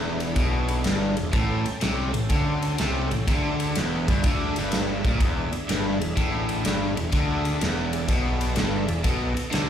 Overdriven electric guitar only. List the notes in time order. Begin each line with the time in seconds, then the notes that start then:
Already playing: E2
0.36 B2
0.84 G2
1.18 E2
1.33 A2
1.67 muted overdriven electric guitar stroke
1.82 C3
2.14 A2
2.31 D3
2.80 C3
3.11 A2
3.28 D3
3.77 E2
4.09 G2
4.25 D3
4.58 G2
5.05 A#2
5.20 E2
5.53 muted overdriven electric guitar stroke
5.69 G2
6.00 E2
6.17 A2
6.64 G2
6.96 E2
7.13 D3
7.60 E2
8.08 B2
8.55 G2
8.87 E2
9.05 B2
9.35 muted overdriven electric guitar stroke
9.51 D3